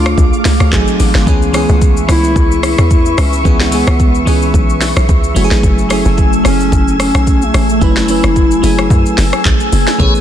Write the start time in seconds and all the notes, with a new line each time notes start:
Already playing: D2 A3 D4 F4 G#4 F5 D6
0.06 cross-stick, shaker
0.18 C#2, kick, shaker
0.33 shaker
0.45 C#2, snare, open hi-hat, shaker
0.60 D2, cross-stick, shaker
0.71 G#1 F#3 A3 C4 D#4 G#4, kick, clap, shaker
0.87 shaker
1.00 A1, open hi-hat, shaker
1.15 G#1, snare, shaker
1.25 C#2 E3 G#3 B3 C#4 G#4 B4 E5 C#6, kick, shaker
1.42 shaker
1.53 E3 G#3 B3 C#4 G#4, cross-stick, open hi-hat, shaker
1.69 C#2, shaker
1.82 kick, shaker
1.97 shaker
2.07 C#2 E3 G#3 B3 C#4 E4, cross-stick, open hi-hat, shaker
2.24 shaker
2.36 C#2, kick, shaker
2.51 shaker
2.63 E4, cross-stick, open hi-hat, shaker
2.78 E2, cross-stick, shaker
2.91 E4, kick, shaker
3.06 shaker
3.18 C#2 C#4, cross-stick, open hi-hat, shaker
3.33 shaker
3.43 C#2 E3 G#3 B3 C#4 G#4, kick, shaker
3.60 snare, shaker
3.71 E3 G#3 B3 C#4 G#4, open hi-hat, shaker
3.87 C#2, cross-stick, shaker
4.00 kick, shaker
4.15 shaker
4.25 C#2 E3 G#3 B3 C#4 G#4, open hi-hat, shaker
4.42 shaker
4.54 B1, kick, shaker
4.70 shaker
4.81 snare, open hi-hat, shaker
4.96 B1, cross-stick, shaker
5.09 C#2, kick, shaker
5.24 shaker
5.34 F#1 F#3 A3 C#4 E4 F#4 G#5 E6, open hi-hat, shaker
5.44 G#4
5.51 A1, snare, shaker
5.63 F#1, kick, shaker
5.78 shaker
5.89 F#3 A3 C#4 E4 G#4, cross-stick, open hi-hat, shaker
6.05 F#1, shaker
6.18 kick, shaker
6.33 shaker
6.43 F#1 F#3 A3 C#4 E4 G#4, cross-stick, open hi-hat, shaker
6.60 shaker
6.72 F#1, kick, shaker
6.88 shaker
7.00 C#4, cross-stick, open hi-hat, shaker
7.15 B1, cross-stick, shaker
7.27 kick, shaker
7.42 A3, shaker
7.54 A1, cross-stick, open hi-hat, shaker
7.69 A3, shaker
7.80 F#1 F#3 A3 C#4 E4 B4, kick, shaker
7.97 snare, shaker
8.07 F#3 A3 C#4 E4 B4, open hi-hat, shaker
8.23 F#1, cross-stick, shaker
8.36 kick, shaker
8.51 shaker
8.62 F#1 F#3 A3 C#4 E4 G#4, open hi-hat, shaker
8.78 cross-stick, shaker
8.90 F#2, kick, shaker
9.06 shaker
9.18 F#1, snare, open hi-hat, shaker
9.33 cross-stick, shaker
9.45 A1, kick, clap, shaker
9.60 shaker
9.72 F#1, open hi-hat, shaker
9.87 snare, shaker
9.98 A1 E3 A3 B3 C#4 G#4 B4 C#5 C#6, kick, low conga, shaker
10.15 shaker